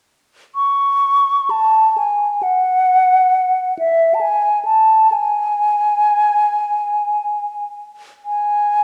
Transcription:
0.55 C#6
1.50 A5
1.98 G#5
2.43 F#5
3.79 E5
4.14 A5
4.21 G#5
4.65 A5
5.12 G#5
8.25 G#5

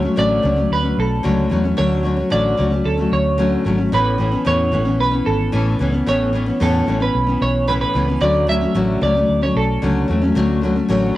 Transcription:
Already playing: C#5
0.02 F#3 A3 C#4
0.16 A1 D3 F#3 A3 C#4 D5
0.42 C#2 D3 F#3 A3 C#4
0.56 F#3 A3 C#4
0.70 D2 B4
0.83 F#3 A3 C#4
0.98 B1 A4
1.23 C#2 D3 F#3 A3 C#4
1.50 E2 D3 F#3 A3 C#4
1.64 F#3 A3 C#4
1.77 D2 D3 F#3 A3 C#4 C#5
2.03 D3 F#3 A3 C#4
2.17 F#3 A3 C#4
2.30 A1 D3 F#3 A3 C#4 D5
2.57 C#2 D3 F#3 A3 C#4
2.71 F#3 A3 C#4
2.85 D2 A4
2.97 F#3 A3 C#4
3.12 D2 C#5
3.38 D3 F#3 A3 C#4
3.65 G#1 D3 F#3 A3 C#4
3.78 F#3 A3 C#4
3.92 A1 A2 E3 B3 C#4 B4
4.18 A2 E3 B3 C#4
4.32 E3 B3 C#4
4.45 E2 A2 E3 B3 C#4 C#5
4.72 A1 A2 E3 B3 C#4
4.85 E3 B3 C#4
5.00 B1 B4
5.11 E3 B3 C#4
5.26 G#1 A4
5.52 A1 A2 E3 B3 C#4
5.79 C#2 A2 E3 B3 C#4
5.92 E3 B3 C#4
6.06 A1 A2 E3 B3 C#4 C#5
6.33 A2 E3 B3 C#4
6.46 E3 B3 C#4
6.60 E2 A2 E3 B3 C#4 A4
6.87 A1 A2 E3 B3 C#4
7.00 E3 B3 C#4 B4
7.15 B1
7.27 E3 B3 C#4
7.41 B1 C#5
7.67 A2 E3 B3 C#4 B4
7.81 B4
7.94 C#2 A2 E3 B3 C#4
8.08 E3 B3 C#4
8.20 D2 D3 F#3 A3 C#4 D5
8.47 D3 F#3 A3 C#4 E5
8.61 F#3 A3 C#4
8.74 A1 D3 F#3 A3 C#4
9.01 C#2 D3 F#3 A3 C#4 D5
9.15 F#3 A3 C#4
9.29 D2
9.41 F#3 A3 C#4 C#5
9.55 B1 A4
9.82 C#2 D3 F#3 A3 C#4
10.08 E2 D3 F#3 A3 C#4
10.22 F#3 A3 C#4
10.35 D2 D3 F#3 A3 C#4
10.61 D3 F#3 A3 C#4
10.76 A3 C#4
10.88 A1 D3 F#3 A3 C#4

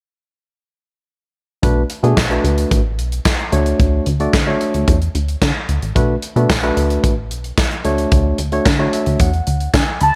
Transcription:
1.62 B1 A3 D4 F#4 B4, kick, closed hi-hat
1.90 closed hi-hat
2.03 B2 A3 D4 F#4 G#4, closed hi-hat
2.17 B1, kick, snare, clap, tambourine
2.30 A3 D4 F#4 B4, closed hi-hat
2.44 D2, closed hi-hat
2.58 closed hi-hat
2.71 A1, kick, closed hi-hat
2.98 B1, closed hi-hat
3.12 closed hi-hat
3.25 kick, snare, clap, tambourine
3.39 closed hi-hat
3.52 D2 A3 D4 F#4 C#5, closed hi-hat
3.66 closed hi-hat
3.80 D2, kick, closed hi-hat
4.06 D2, closed hi-hat
4.20 A3 D4 F#4 D5, closed hi-hat
4.33 D3, kick, snare, clap, tambourine
4.47 A3 D4 F#4 C#5
4.61 closed hi-hat
4.74 D2, closed hi-hat
4.88 E2, kick, closed hi-hat
5.02 closed hi-hat
5.15 D2, closed hi-hat
5.28 closed hi-hat
5.42 D3, kick, snare, clap, tambourine
5.69 D2, closed hi-hat
5.82 A1, closed hi-hat
5.95 B1 A3 D4 F#4 B4, kick, closed hi-hat
6.22 closed hi-hat
6.36 B2 A3 D4 F#4 B4, closed hi-hat
6.50 B1, kick, snare, clap, tambourine
6.63 A3 D4 F#4 B4, closed hi-hat
6.77 D2, closed hi-hat
6.90 closed hi-hat
7.04 A1, kick, closed hi-hat
7.31 B1, closed hi-hat
7.44 closed hi-hat
7.58 kick, snare, clap, tambourine
7.71 closed hi-hat
7.84 D2 A3 D4 F#4 C#5, closed hi-hat
7.98 closed hi-hat
8.12 D2, kick, closed hi-hat
8.38 D2, closed hi-hat
8.52 A3 D4 F#4 C#5, closed hi-hat
8.66 D3, kick, snare, clap, tambourine
8.79 A3 D4 F#4 C#5
8.93 E5, closed hi-hat
9.06 D2, closed hi-hat
9.20 E2 F#5, kick, closed hi-hat
9.33 closed hi-hat
9.47 D2, closed hi-hat
9.60 closed hi-hat
9.74 D3 G#5, kick, snare, clap, tambourine
10.01 D2 A5 B5, closed hi-hat

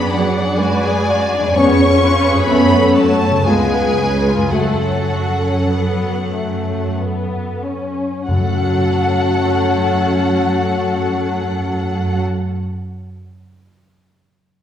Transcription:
Already playing: F#2 B3 D4 G#4 D5 B5
0.15 F#3 B3 F#5
0.39 D4
0.58 G#3 F#4 B4 G#5
0.84 G#4
1.06 F#4 D5
1.34 D4
1.39 F2
1.43 B3
1.48 C#4
1.52 C#4 G#4 C#5 C#6
1.56 F2 B3 C#5
1.83 C#4
2.03 F4 B4
2.30 F#2 G#4
2.36 A3
2.45 F#4 A4 B5
2.49 F#2 A3 B3 C#4
2.76 C#4
2.96 A3 A5
3.01 F#4
3.25 C#4
3.30 C#3
3.34 B3
3.39 C#4
3.44 C#2 G#3 B3 F4 G#4 G#5
3.49 G#3 B4
3.74 B3
3.99 C#4
4.28 F4
4.35 F#2
4.39 A3
4.44 C#4
4.48 A3 F#4 A4 F#5
4.53 F#2 F#3 A3 A4
4.84 C#4
5.12 F#4
5.43 C#4
5.71 B3
6.33 A3
6.98 B3
7.62 C#4
8.27 F#2 F#3 A3 C#4 F#4 A4 F#5
8.35 F#3
8.43 A3
8.49 C#4
8.56 F#4
8.63 C#5

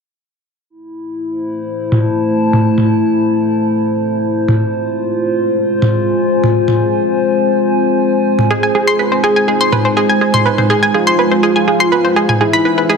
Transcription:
0.70 A3 C4 E4 C5
1.30 C5
1.87 A5
1.92 mid tom
2.53 mid tom
2.78 mid tom
4.48 mid tom
4.60 G#3 F4
5.82 mid tom
5.89 G#5
6.44 mid tom
6.68 mid tom
8.39 mid tom
8.50 G#3 D#4 G#4
8.63 G#5
8.75 G#4
8.87 C6
8.99 B4
9.12 C5
9.24 G#4
9.36 G#5
9.48 G#4
9.61 C6
9.72 B4, mid tom
9.85 C5
9.97 G#4
10.09 G#5
10.21 G#4
10.34 C6, mid tom
10.46 B4
10.58 C5, mid tom
10.70 G#4
10.83 G#5
10.94 F4 G#4
11.07 C6
11.19 B4
11.31 C5
11.43 G#4
11.56 G#5
11.68 G#4
11.80 C6
11.92 B4
12.05 C5
12.16 G#4
12.29 G#5, mid tom
12.41 B3 E4 G#4 B4
12.53 B5
12.65 B4
12.78 B4
12.90 G#4

